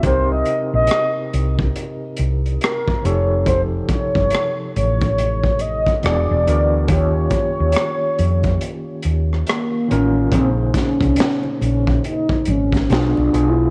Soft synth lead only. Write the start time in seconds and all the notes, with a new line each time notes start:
0.06 C5
0.32 D#5
0.75 D#5
2.63 A#4
3.05 C#5
3.48 C5
3.90 C#5
4.76 C#5
5.61 D#5
6.04 D5
6.90 C#5
9.49 A#3
9.92 C#4
10.35 C4
10.79 C#4
11.63 C#4
12.06 D#4
12.50 C#4
12.91 D4
13.49 E4